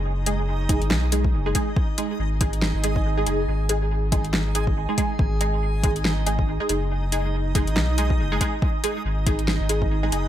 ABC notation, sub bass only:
X:1
M:4/4
L:1/16
Q:"Swing 16ths" 1/4=140
K:G#m
V:1 name="Sub bass" clef=bass
F,,,6- F,,, G,,, B,,,4 F,,,2 z2 | z4 G,,,4- G,,, G,,,4- G,,, F,,,2 | G,,,12- G,,, z3 | G,,,12- G,,, z F,,,2- |
F,,,6- F,,, G,,, B,,,4 F,,,2 z2 | z4 G,,,4- G,,, G,,,4- G,,, F,,,2 |]